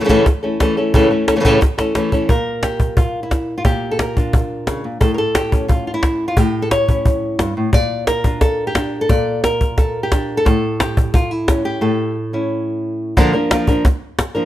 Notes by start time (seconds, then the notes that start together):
0.00 C#3 E3 A3 C#4 A4
0.05 C#3 E3 A3 C#4 A4
0.09 A2 C#3 E3 A3 C#4 A4, cajon bass
0.26 muted nylon-string guitar stroke, cajon bass, cajon slap
0.43 E3 A3 C#4 A4
0.60 E3 A3 C#4 A4, cajon bass, cajon slap
0.77 E3 A3 C#4 A4
0.94 A2 C#3 E3 A3 C#4 A4, cajon bass
1.11 E3 A3 C#4 A4
1.28 E3 A3 C#4 A4, cajon slap
1.36 C#3 E3 A3 C#4 A4
1.40 C#3 E3 A3 C#4 A4
1.45 A2 C#3 E3 A3 C#4 A4, cajon bass
1.61 muted nylon-string guitar stroke, cajon bass, cajon slap
1.78 E3 A3 C#4 A4, cajon slap
1.95 E3 A3 C#4 A4, cajon slap
2.12 E3 A3 C#4 A4, cajon bass
2.29 A#2 A#4, cajon bass
2.63 G4, cajon slap
2.80 cajon bass
2.97 F4, cajon bass
3.23 E4
3.31 cajon bass, cajon slap
3.58 F4
3.65 A#2 G4, cajon bass
3.91 A4
3.99 A#4, cajon slap
4.17 D4 F4, cajon bass
4.33 cajon bass
4.67 C#3, cajon slap
4.84 A#2
5.01 A2 A4, cajon bass
5.14 A4 A#4
5.35 G4, cajon slap
5.52 C#4, cajon bass
5.68 F4, cajon bass
5.87 F4
5.94 E4
6.03 cajon bass, cajon slap
6.28 F4
6.37 A2 G4, cajon bass
6.62 A4
6.71 C#5, cajon slap
6.88 C#4 E4, cajon bass
7.06 cajon bass
7.39 G2, cajon slap
7.57 A2
7.73 A#2 D5, cajon bass
8.07 A#4, cajon slap
8.24 D4 F4, cajon bass
8.41 A4, cajon bass, cajon slap
8.67 G4
8.75 D4, cajon slap
9.01 A4
9.09 A#2 D5, cajon bass
9.44 A#4, cajon slap
9.61 cajon bass
9.78 A4, cajon bass, cajon slap
10.03 G4
10.12 D4, cajon bass, cajon slap
10.37 A4
10.45 A2 A4, cajon bass, cajon slap
10.80 G4, cajon slap
10.97 cajon bass
11.14 F4, cajon bass
11.31 E4
11.48 C#4, cajon bass, cajon slap
11.65 G4
11.81 A2 A4
12.33 C#4 E4
13.17 A#2 D3 F3 A#3 D4 A#4, cajon bass, cajon slap
13.33 F3 A#3 D4 A#4
13.51 F3 A#3 D4 A#4, cajon slap
13.67 F3 A#3 D4 A#4, cajon bass
13.85 muted nylon-string guitar stroke, cajon bass, cajon slap
14.19 cajon slap
14.35 F3 A#3 D4 A#4, cajon slap